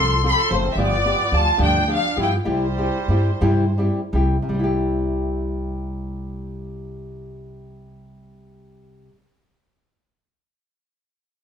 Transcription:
Already playing: upright bass C2, nylon-string guitar F3 C4 F4 A4, trumpet A4, violin section C6
0.23 nylon-string guitar F3 C4 F4 A4, trumpet A4, violin section C6
0.28 trumpet G4, violin section B5
0.36 trumpet A4, violin section C6
0.50 upright bass F#1, nylon-string guitar F3 C4 F4 A4, trumpet A3, violin section C5
0.66 trumpet C4
0.72 upright bass G1, violin section E5
0.77 nylon-string guitar G2 D3 F3 B3 F4 G4, trumpet B3, violin section D5
1.05 nylon-string guitar F3 B3 F4 G4
1.31 upright bass D2, nylon-string guitar F3 B3 F4 G4
1.35 trumpet F4, violin section A5
1.57 upright bass D2, nylon-string guitar G2 D3 F3 B3 F4 G4, trumpet D4
1.62 violin section G5
1.87 nylon-string guitar F3 B3 F4 G4, trumpet D4
1.93 violin section F5
2.16 upright bass G2, nylon-string guitar F3 B3 F4 G4, trumpet E4
2.23 violin section G5
2.45 upright bass C2, nylon-string guitar C3 G3 C4 E4 G4, trumpet G3
2.50 violin section C5
2.77 nylon-string guitar G3 C4 E4 G4
3.08 upright bass G2, nylon-string guitar G3 C4 E4 G4
3.41 upright bass G2, nylon-string guitar C3 G3 C4 E4 G4
3.78 nylon-string guitar G3 C4 E4 G4
4.13 upright bass C2, nylon-string guitar G3 C4 E4 G4
4.42 nylon-string guitar C3
4.49 upright bass C2, nylon-string guitar G3
4.54 nylon-string guitar C4
4.59 nylon-string guitar E4
4.64 nylon-string guitar G4

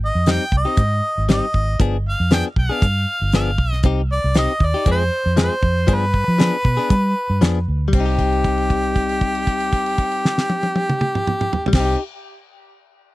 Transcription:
0.05 harmonica D#5
0.15 fingered electric bass F2
0.26 clean electric guitar G3 C4 D#4 G4, snare, closed hi-hat
0.31 harmonica G5
0.52 fingered electric bass C2, kick
0.57 harmonica D#5
0.65 clean electric guitar C4 D#4 G4
0.77 fingered electric bass G#2, kick, closed hi-hat
1.18 fingered electric bass G#1
1.29 clean electric guitar G3 C4 D#4 G4, harmonica D#5, snare, closed hi-hat
1.54 fingered electric bass G#1, kick
1.79 fingered electric bass G1, clean electric guitar F3 B3 D4 G#4, kick, closed hi-hat
2.09 harmonica F5
2.20 fingered electric bass F2
2.31 clean electric guitar F3 B3 D4 G#4, harmonica G5, snare, closed hi-hat
2.56 fingered electric bass B1, harmonica F5, kick
2.69 clean electric guitar B3 D4 G#4
2.82 fingered electric bass G2, kick, closed hi-hat
3.22 fingered electric bass G1
3.32 clean electric guitar F3 B3 D4 G#4, harmonica F5, snare, closed hi-hat
3.58 fingered electric bass B1, kick
3.73 snare
3.83 fingered electric bass C2, clean electric guitar C4 D#4 G4, kick, closed hi-hat
4.12 harmonica D5
4.24 fingered electric bass C2
4.34 clean electric guitar C4 D#4 G4, harmonica D#5, snare, closed hi-hat
4.60 fingered electric bass D#2, kick
4.65 harmonica D5
4.74 clean electric guitar D#4 G4
4.86 fingered electric bass F2, clean electric guitar F3 G#3 C4 G#4, kick, closed hi-hat
4.91 harmonica C5
5.26 fingered electric bass F2
5.37 clean electric guitar F3 G#3 C4 G#4, snare, closed hi-hat
5.42 harmonica C5
5.63 fingered electric bass F2, kick
5.87 fingered electric bass G2, clean electric guitar F3 B3 D4 G#4, kick, closed hi-hat
5.94 harmonica B4
6.14 kick
6.28 fingered electric bass F3
6.38 clean electric guitar F3 B3 D4 G#4, snare, closed hi-hat
6.65 fingered electric bass B2, kick
6.77 clean electric guitar B3 D4 G#4
6.90 fingered electric bass G3, kick, closed hi-hat
7.30 fingered electric bass G2
7.41 fingered electric bass F2, clean electric guitar F3 B3 D4 G#4, snare, closed hi-hat
7.68 fingered electric bass D2
7.88 clean electric guitar G3
7.93 fingered electric bass C2, clean electric guitar C4, harmonica G4, kick, crash
8.00 clean electric guitar D#4
8.06 clean electric guitar G4
8.19 kick, crash
8.32 crash
8.44 kick, crash
8.58 crash
8.70 kick, crash
8.83 crash
8.96 kick, crash
9.09 crash
9.21 kick, crash
9.35 crash
9.47 kick, crash
9.60 crash
9.72 kick, crash
9.86 crash
9.98 kick, crash
10.12 crash
10.25 snare
10.38 snare
10.50 high tom
10.63 high tom
10.76 high tom
10.89 mid tom
11.01 mid tom
11.15 mid tom
11.27 mid tom
11.41 mid tom
11.53 floor tom
11.66 clean electric guitar G3, floor tom
11.73 fingered electric bass C2, clean electric guitar C4, harmonica G4, kick, snare, crash
11.80 clean electric guitar D#4
11.85 clean electric guitar G4

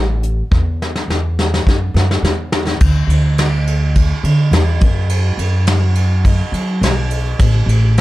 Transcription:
Already playing: upright bass A1
0.23 closed hi-hat
0.51 upright bass E2, kick, snare
0.82 snare
0.96 snare
1.08 upright bass E2, snare
1.39 snare
1.54 snare
1.67 upright bass F#2, kick, snare
1.94 upright bass F#2, snare
2.11 snare
2.22 upright bass E2, snare
2.52 snare
2.67 snare
2.80 upright bass D2, kick, crash
3.07 upright bass D2, ride
3.38 snare, ride
3.67 ride
3.95 kick, ride
4.23 upright bass D3, ride
4.51 upright bass E2, snare, ride
4.81 upright bass F#2, kick, ride
5.09 ride
5.37 upright bass F#2, ride
5.67 snare, ride
5.95 ride
6.25 kick, ride
6.52 upright bass F#3, ride
6.81 upright bass B1, snare, ride
7.11 ride
7.39 upright bass A1, kick, ride
7.66 upright bass A1, ride
7.97 ride

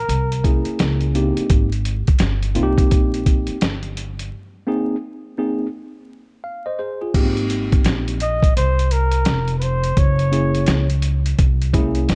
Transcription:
Already playing: flugelhorn A#4
0.09 upright bass C2, closed hi-hat
0.32 closed hi-hat
0.44 tine electric piano A#3 C#4 E4 G#4, kick, closed hi-hat
0.65 muted upright bass stroke, closed hi-hat
0.79 upright bass C#2, snare, closed hi-hat
1.01 closed hi-hat
1.15 tine electric piano A#3 C4 D#4 G4, closed hi-hat
1.37 muted upright bass stroke, closed hi-hat
1.50 upright bass G#1, kick, closed hi-hat
1.72 closed hi-hat
1.85 closed hi-hat
2.07 muted upright bass stroke, kick, closed hi-hat
2.19 upright bass G1, snare, closed hi-hat
2.43 closed hi-hat
2.55 upright bass C2, tine electric piano A#3 C4 D#4 F4, closed hi-hat
2.63 tine electric piano G4
2.78 kick, closed hi-hat
2.91 upright bass A#1, kick, closed hi-hat
3.14 closed hi-hat
3.26 kick, closed hi-hat
3.47 muted upright bass stroke, closed hi-hat
3.61 upright bass G1, snare, closed hi-hat
3.83 closed hi-hat
3.97 closed hi-hat
4.19 closed hi-hat
4.67 tine electric piano A#3 C4 D#4 G#4
5.38 tine electric piano A#3 C4 D#4 G#4
6.44 tine electric piano F5
6.66 tine electric piano C5 D#5
6.79 tine electric piano G#4 C5
7.01 tine electric piano F4 G#4
7.14 upright bass G#1, tine electric piano A#3 B3 D#4 G4, kick, closed hi-hat, crash
7.21 tine electric piano C4
7.37 closed hi-hat
7.50 closed hi-hat
7.72 kick, closed hi-hat
7.84 upright bass A#1, snare, closed hi-hat
8.08 closed hi-hat
8.20 flugelhorn D#5, closed hi-hat
8.42 kick, closed hi-hat
8.57 upright bass C2, flugelhorn C5, closed hi-hat
8.79 closed hi-hat
8.91 flugelhorn A#4, closed hi-hat
9.12 closed hi-hat
9.25 upright bass F1, snare, closed hi-hat
9.48 closed hi-hat
9.58 flugelhorn B4, closed hi-hat
9.63 flugelhorn C5
9.84 closed hi-hat
9.97 upright bass F#1, flugelhorn C#5, kick, closed hi-hat
10.19 closed hi-hat
10.31 tine electric piano A#3 C#4 E4 G#4, closed hi-hat
10.55 closed hi-hat
10.66 upright bass C#2, snare, closed hi-hat
10.90 closed hi-hat
11.02 closed hi-hat
11.26 closed hi-hat
11.39 upright bass C2, kick, closed hi-hat
11.62 closed hi-hat
11.73 tine electric piano G#3 C#4 E4 G#4, kick, closed hi-hat
11.80 tine electric piano A#3
11.95 closed hi-hat
12.09 upright bass G1, snare, closed hi-hat

